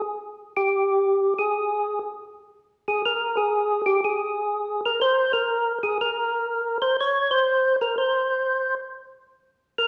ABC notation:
X:1
M:4/4
L:1/8
Q:"Swing" 1/4=122
K:Ab
V:1 name="Tonewheel organ"
z2 G3 A3 | z3 A B A2 G | A3 B c B2 A | B3 c d c2 B |
c3 z4 B |]